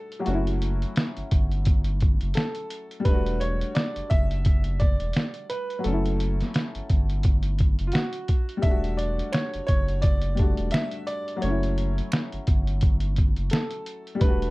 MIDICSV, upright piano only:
0, 0, Header, 1, 2, 480
1, 0, Start_track
1, 0, Tempo, 697674
1, 182, Time_signature, 4, 2, 24, 8
1, 9979, End_track
2, 0, Start_track
2, 0, Title_t, "Upright piano"
2, 0, Program_c, 0, 0
2, 0, Note_on_c, 0, 69, 93
2, 134, Note_on_c, 0, 67, 54
2, 152, Note_off_c, 0, 69, 0
2, 178, Note_off_c, 0, 67, 0
2, 180, Note_on_c, 0, 66, 79
2, 633, Note_off_c, 0, 66, 0
2, 1617, Note_on_c, 0, 69, 87
2, 2097, Note_on_c, 0, 71, 98
2, 2114, Note_off_c, 0, 69, 0
2, 2341, Note_on_c, 0, 73, 91
2, 2346, Note_off_c, 0, 71, 0
2, 2564, Note_off_c, 0, 73, 0
2, 2579, Note_on_c, 0, 74, 90
2, 2820, Note_on_c, 0, 76, 111
2, 2827, Note_off_c, 0, 74, 0
2, 3300, Note_on_c, 0, 74, 94
2, 3315, Note_off_c, 0, 76, 0
2, 3753, Note_off_c, 0, 74, 0
2, 3781, Note_on_c, 0, 71, 93
2, 4004, Note_off_c, 0, 71, 0
2, 4019, Note_on_c, 0, 69, 80
2, 4953, Note_off_c, 0, 69, 0
2, 5416, Note_on_c, 0, 65, 66
2, 5458, Note_on_c, 0, 66, 85
2, 5459, Note_off_c, 0, 65, 0
2, 5912, Note_off_c, 0, 66, 0
2, 5933, Note_on_c, 0, 76, 108
2, 6160, Note_off_c, 0, 76, 0
2, 6173, Note_on_c, 0, 74, 92
2, 6414, Note_on_c, 0, 73, 88
2, 6425, Note_off_c, 0, 74, 0
2, 6640, Note_off_c, 0, 73, 0
2, 6650, Note_on_c, 0, 73, 102
2, 6892, Note_on_c, 0, 74, 103
2, 6903, Note_off_c, 0, 73, 0
2, 7374, Note_on_c, 0, 76, 99
2, 7391, Note_off_c, 0, 74, 0
2, 7615, Note_on_c, 0, 74, 100
2, 7625, Note_off_c, 0, 76, 0
2, 7856, Note_on_c, 0, 73, 85
2, 7865, Note_off_c, 0, 74, 0
2, 8311, Note_off_c, 0, 73, 0
2, 9296, Note_on_c, 0, 69, 83
2, 9777, Note_on_c, 0, 71, 93
2, 9793, Note_off_c, 0, 69, 0
2, 9979, Note_off_c, 0, 71, 0
2, 9979, End_track
0, 0, End_of_file